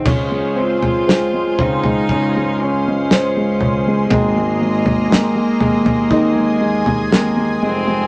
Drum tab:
CC |x---------------|----------------|
SD |----o-------o---|----o-------o---|
FT |o--o--oo------o-|o--o--oo---o----|
BD |o-----o-o-------|o-------o-------|